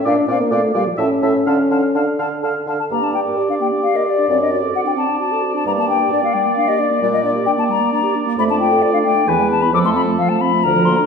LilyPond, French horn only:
\new Staff \with { instrumentName = "French horn" } { \time 3/4 \key d \minor \tempo 4 = 131 d'8 c'16 bes16 a8 g16 f16 cis'4 | cis'4 d'4 r4 | \key g \minor g'2. | c'2. |
bes2.~ | bes2. | \key f \lydian a2 b4 | f2. | }